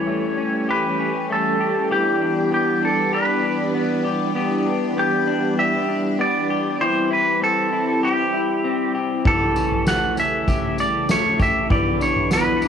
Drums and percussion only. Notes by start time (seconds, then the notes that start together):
9.25 kick, floor tom
9.56 tambourine
9.72 floor tom
9.87 snare, tambourine
10.17 tambourine
10.48 kick, floor tom, tambourine
10.78 tambourine
11.09 snare, tambourine
11.40 kick, floor tom, tambourine
11.70 kick, floor tom
12.01 tambourine
12.16 floor tom
12.31 snare, tambourine
12.62 tambourine